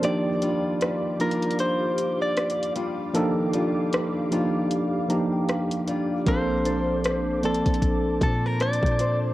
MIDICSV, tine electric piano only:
0, 0, Header, 1, 2, 480
1, 0, Start_track
1, 0, Tempo, 779221
1, 18, Time_signature, 4, 2, 24, 8
1, 5752, End_track
2, 0, Start_track
2, 0, Title_t, "Tine electric piano"
2, 0, Program_c, 0, 4
2, 0, Control_c, 0, 64, 127
2, 0, Note_on_c, 0, 70, 64
2, 14, Note_on_c, 0, 53, 92
2, 17, Note_on_c, 0, 58, 79
2, 21, Note_on_c, 0, 62, 83
2, 25, Note_on_c, 0, 63, 80
2, 26, Control_c, 0, 64, 0
2, 27, Note_on_c, 0, 67, 103
2, 142, Control_c, 0, 64, 127
2, 147, Note_off_c, 0, 70, 0
2, 618, Note_off_c, 0, 53, 0
2, 620, Note_off_c, 0, 58, 0
2, 622, Note_off_c, 0, 62, 0
2, 623, Note_off_c, 0, 63, 0
2, 625, Note_off_c, 0, 67, 0
2, 734, Note_on_c, 0, 53, 65
2, 738, Note_on_c, 0, 58, 63
2, 742, Note_on_c, 0, 62, 62
2, 746, Note_on_c, 0, 63, 63
2, 748, Note_on_c, 0, 65, 71
2, 1526, Note_off_c, 0, 53, 0
2, 1528, Note_off_c, 0, 58, 0
2, 1530, Note_off_c, 0, 62, 0
2, 1532, Note_off_c, 0, 63, 0
2, 1533, Note_off_c, 0, 65, 0
2, 1932, Note_on_c, 0, 53, 105
2, 1936, Note_on_c, 0, 58, 95
2, 1939, Note_on_c, 0, 62, 101
2, 1943, Note_on_c, 0, 63, 100
2, 1946, Note_on_c, 0, 69, 116
2, 2537, Note_off_c, 0, 53, 0
2, 2539, Note_off_c, 0, 58, 0
2, 2541, Note_off_c, 0, 62, 0
2, 2543, Note_off_c, 0, 63, 0
2, 2544, Note_off_c, 0, 69, 0
2, 2653, Note_on_c, 0, 53, 76
2, 2657, Note_on_c, 0, 58, 71
2, 2661, Note_on_c, 0, 62, 73
2, 2663, Note_on_c, 0, 63, 74
2, 2666, Note_on_c, 0, 67, 87
2, 3060, Note_off_c, 0, 53, 0
2, 3062, Note_off_c, 0, 58, 0
2, 3064, Note_off_c, 0, 62, 0
2, 3065, Note_off_c, 0, 63, 0
2, 3067, Note_off_c, 0, 67, 0
2, 3134, Note_on_c, 0, 53, 86
2, 3137, Note_on_c, 0, 58, 76
2, 3141, Note_on_c, 0, 62, 80
2, 3141, Note_on_c, 0, 82, 71
2, 3143, Note_on_c, 0, 63, 79
2, 3147, Note_on_c, 0, 67, 91
2, 3269, Note_off_c, 0, 82, 0
2, 3281, Note_on_c, 0, 79, 66
2, 3373, Note_off_c, 0, 79, 0
2, 3380, Note_on_c, 0, 77, 69
2, 3738, Note_off_c, 0, 53, 0
2, 3740, Note_off_c, 0, 58, 0
2, 3742, Note_off_c, 0, 62, 0
2, 3743, Note_off_c, 0, 63, 0
2, 3745, Note_off_c, 0, 67, 0
2, 3835, Note_off_c, 0, 77, 0
2, 3856, Note_on_c, 0, 53, 84
2, 3859, Note_on_c, 0, 58, 80
2, 3862, Note_on_c, 0, 60, 85
2, 3866, Control_c, 0, 64, 0
2, 3866, Note_on_c, 0, 62, 82
2, 3870, Note_on_c, 0, 69, 105
2, 3957, Control_c, 0, 64, 127
2, 4459, Note_off_c, 0, 53, 0
2, 4461, Note_off_c, 0, 58, 0
2, 4462, Note_off_c, 0, 60, 0
2, 4464, Note_off_c, 0, 62, 0
2, 4466, Note_off_c, 0, 69, 0
2, 4576, Note_on_c, 0, 53, 66
2, 4579, Note_on_c, 0, 58, 60
2, 4583, Note_on_c, 0, 60, 59
2, 4586, Note_on_c, 0, 62, 60
2, 4590, Note_on_c, 0, 69, 74
2, 5367, Note_off_c, 0, 53, 0
2, 5368, Note_off_c, 0, 58, 0
2, 5371, Note_off_c, 0, 60, 0
2, 5372, Note_off_c, 0, 62, 0
2, 5374, Note_off_c, 0, 69, 0
2, 5752, End_track
0, 0, End_of_file